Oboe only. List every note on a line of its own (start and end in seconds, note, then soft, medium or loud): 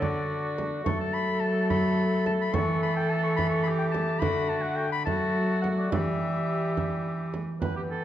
0.02 0.57 D5 loud
0.86 0.99 C#6 loud
1.01 1.15 A5 loud
1.13 1.42 B5 loud
1.40 1.69 A5 loud
1.70 2.25 B5 loud
2.27 2.33 A5 loud
2.42 2.56 B5 loud
2.54 2.82 C#6 loud
2.83 2.96 B5 loud
2.97 3.11 G5 medium
3.10 3.23 A5 loud
3.23 3.36 C#6 loud
3.36 3.49 B5 loud
3.50 3.63 C#6 loud
3.63 3.70 B5 loud
3.78 3.85 G5 loud
3.91 4.21 A5 loud
4.19 4.50 B5 loud
4.49 4.64 A5 loud
4.62 4.77 F#5 loud
4.76 4.91 G5 loud
4.92 5.05 B5 loud
5.05 5.62 A5 loud
5.62 5.69 F#5 medium
5.78 5.92 D5 medium
5.92 7.31 E5 loud
7.62 8.04 G5 medium